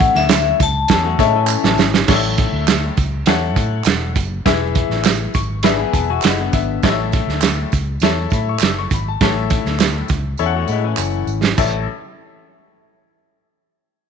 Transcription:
Already playing: A2 C#4 E4 A4 C#5 E5 F#5
0.01 kick, tambourine
0.15 D2 E5, snare
0.29 snare, clap, closed hi-hat, tambourine
0.60 C#2 A5, kick, closed hi-hat, tambourine
0.88 E2 C#4 A4, kick, snare, closed hi-hat, tambourine
1.05 A3 F#4
1.19 A2 G#3 C#4 E4 A4 C#5 E5, kick, closed hi-hat, tambourine
1.35 E3 C#4
1.47 clap, tambourine
1.64 A1, snare
1.78 G#1, snare, tambourine
1.94 snare
2.08 A1 A2 E4 A4 C#5 D5, kick, snare, crash, tambourine
2.16 E5
2.38 kick, closed hi-hat
2.53 D2
2.68 snare, clap, closed hi-hat, tambourine
2.97 C#2, kick, closed hi-hat, tambourine
3.26 E2 E4 A4 C#5 F#5, snare, closed hi-hat, tambourine
3.56 A2, kick, closed hi-hat, tambourine
3.84 E1, snare, clap, closed hi-hat, tambourine
4.15 F#1, kick, closed hi-hat, tambourine
4.46 E1 E3 E4 G#4 B4 E5, kick, snare, closed hi-hat
4.75 kick, closed hi-hat
4.90 A1, snare
5.05 snare, clap, closed hi-hat, tambourine
5.34 G#1 C#6, kick, closed hi-hat, tambourine
5.63 D4 E4 G#4 B4 E5 B5, snare, closed hi-hat, tambourine
5.79 B3 G#4
5.93 E1 A5, kick, closed hi-hat, tambourine
6.10 F#4 G#5
6.22 F#1 G#3 E4 F#5, snare, clap, closed hi-hat, tambourine
6.39 D3 B3
6.53 G#1 E5, kick, closed hi-hat, tambourine
6.83 A1 A2 E4 A4 C#5 D#5, kick, snare, closed hi-hat, tambourine
6.90 E5
7.12 kick, closed hi-hat, tambourine
7.28 D2, snare
7.41 snare, clap, closed hi-hat, tambourine
7.72 C#2, kick, closed hi-hat, tambourine
8.00 E2 E4 A4 C#5 E5, snare, closed hi-hat, tambourine
8.30 A2 B5, kick, closed hi-hat, tambourine
8.49 C#6
8.59 F#1, snare, clap, closed hi-hat, tambourine
8.63 E6
8.79 C#6
8.90 G#1 B5, kick, closed hi-hat, tambourine
9.08 A5
9.21 A1 A2 E4 A4 C#5 E5, kick, snare, closed hi-hat
9.50 kick, closed hi-hat, tambourine
9.66 D2, snare
9.80 snare, clap, closed hi-hat, tambourine
10.08 C#2, kick, closed hi-hat, tambourine
10.37 E2 C#4 E4 A4 C#5 E5, tambourine
10.46 F#5
10.55 A3 F#4
10.68 A2 G#3 E4, tambourine
10.84 E3 C#4
10.97 F#1, clap, tambourine
11.27 G#1, tambourine
11.43 snare
11.58 A1 E4 A4 C#5 E5, kick, tambourine, crash

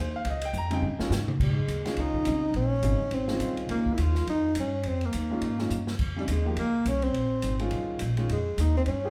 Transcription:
Already playing: D#2
0.01 C5
0.16 F5
0.25 C#2, ride
0.30 D#5
0.41 G5, ride
0.53 F2, hi-hat pedal
0.58 A#5
0.70 C#3 G3 C4 D#4 G5, ride
0.82 G2
0.98 D#3 G#3 C#4 F4, muted upright bass stroke, snare
1.10 G#2, snare, hi-hat pedal
1.28 mid tom
1.40 A#2 G#3, kick, crash
1.49 G#2
1.59 F2
1.68 D#2, hi-hat pedal, ride
1.85 D#3 G#3 C#4 F4, snare, ride
1.97 C#2 D#4, ride
2.14 kick
2.25 C2 C#3 G3 C4 D#4, hi-hat pedal, ride
2.54 A#1 C#4, ride
2.82 G#1 C#3 G3 C4 D#4, hi-hat pedal, ride
3.00 muted upright bass stroke
3.11 G#1 C4, ride
3.28 D#3 G#3 C#4 F4, snare
3.40 C2, hi-hat pedal, ride
3.57 ride
3.69 C#2 D#3 G#3 A#3 C#4 F4, ride
3.86 kick
3.93 E4
3.98 D#2 F4, hi-hat pedal, ride
4.15 snare
4.27 F2 D#4, ride
4.55 G2, hi-hat pedal, ride
4.60 C#4
4.83 F2, ride
4.88 C4
5.01 ride
5.05 A#3
5.13 D#2, hi-hat pedal, ride
5.31 D#3 G#3 C#4 F4
5.41 G#2, ride
5.59 D#3 G#3 C#4 F4, snare
5.70 G2, hi-hat pedal
5.87 snare
5.99 F2, kick, crash
6.16 C#3 G3 C4 D#4
6.28 D#2 G#3, hi-hat pedal, ride
6.45 F3 A#3 D#4 G4
6.57 C#2 A#3, ride
6.85 C2 C#4, hi-hat pedal, ride
7.02 C4, ride
7.14 A#1, ride
7.42 G#1, hi-hat pedal, ride
7.59 D#3 G#3 C#4 F4, ride
7.71 C2, ride
7.99 A#1, hi-hat pedal, ride
8.17 D#3 G#3 C#4 F4, ride
8.29 F2 G#3, ride
8.58 D#2 D#4, hi-hat pedal, ride
8.77 C4
8.86 G2 C#4, ride
9.04 F4 G4 G#4 C5

